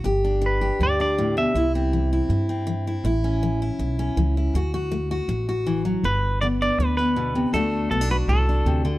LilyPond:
<<
  \new Staff \with { instrumentName = "Clean electric guitar" } { \time 4/4 \key g \major \tempo 4 = 160 r4 b'4 d''8 d''4 e''8~ | e''8 r2. r8 | r1 | r1 |
b'4 d''8 d''8 b'8 b'4. | a'4 a'8 b'8 a'4. r8 | }
  \new Staff \with { instrumentName = "Steel-string acoustic guitar" } { \time 4/4 \key g \major << { g'8 d'4 g'4 d'4. | e'8 c'4 e'4 c'4 e'8 | e'8 cis'4 e'4 cis'4 e'8 | fis'8 fis'4 fis'4 fis'4. |
r4 b8 d'4 b4. | <a d' fis'>4 b16 d'16 fis'4 d'4. | } \\ { g,4 d4 g,4 a,8 b,8 | c4 e4 g,4 e4 | a,4 e4 e,4 e4 | d4 a4 a,4 e8 fis8 |
g,4 d4 g,4 b,8 c8 | d4 a4 a,4 c8 d8 | } >> }
  \new Staff \with { instrumentName = "Upright bass" } { \clef bass \time 4/4 \key g \major g,,2 d,2 | c,2 g,2 | a,,2 b,,4 cis,4 | d,2 a,,2 |
g,,2 d,2 | d,4 b,,4 c,4 d,4 | }
>>